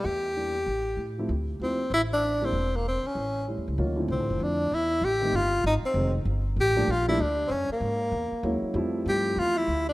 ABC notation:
X:1
M:4/4
L:1/16
Q:"Swing" 1/4=193
K:Dm
V:1 name="Tenor saxophone"
G12- G2 z2 | z4 C4 E2 D4 C2- | C2 B,2 C2 _D6 z4 | z4 C4 D4 E4 |
G4 F4 ^D2 ^B,4 z2 | z4 G4 F2 E2 D3- D/2 C/2 | ^C2 ^A,12 z2 | z4 G4 F2 E4 D2 |]
V:2 name="Grand piano"
z4 [G,B,DE]2 z8 [F,A,CE]2 | z4 [F,A,CE]2 z8 [G,B,DE]2 | z12 [G,A,^CE]4 | [_E,^F,B,^C=F]2 [D,=F,A,=C=E]8 z6 |
z2 [_E,G,A,C_E]2 z8 [^D,^F,^G,^B,^D]2 z2 | z6 [F,G,A,B,D]2 z2 [F,G,A,B,D]2 z4 | z12 [^F,^G,^A,^CE]4 | [F,G,A,CE]8- [F,G,A,CE]2 z6 |]
V:3 name="Upright bass" clef=bass
E,,8 A,,,4 A,,4 | D,,4 _E,,4 A,,,8 | E,,,6 z2 A,,,4- (3A,,,2 E,,2 ^C,,2 | D,,4 (3C,,2 A,,,2 F,,,2 F,,4 E,,4 |
A,,,4 G,,,4 ^G,,,2 z2 F,,,4 | G,,,4 A,,,4 B,,,4 D,,4 | ^F,,2 z2 ^G,,4 E,,2 z2 _E,,2 z2 | F,,4 G,,4 E,,4 D,,4 |]